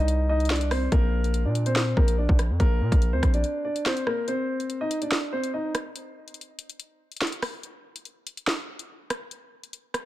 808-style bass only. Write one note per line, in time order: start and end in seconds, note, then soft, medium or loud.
0.00 0.88 C2 loud
0.92 1.47 A#1 loud
1.45 1.94 A#2 loud
1.97 2.28 A#1 loud
2.29 2.51 A#1 loud
2.50 2.59 F2 loud
2.60 2.82 A#1 loud
2.81 2.91 A#2 loud
2.92 3.14 A#1 loud
3.13 3.22 D2 medium
3.23 3.44 A#1 loud